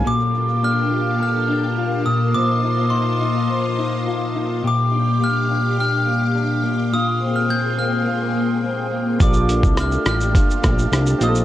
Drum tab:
HH |----------------|----------------|----------------|----------------|
SH |----------------|----------------|----------------|----------------|
SD |----------------|----------------|----------------|----------------|
BD |----------------|----------------|----------------|----------------|

HH |x-x-x-x-x-x-x-x-|
SH |xxxxxxxxxxxxxxxx|
SD |----r-r---r-r---|
BD |o--o----o-o-----|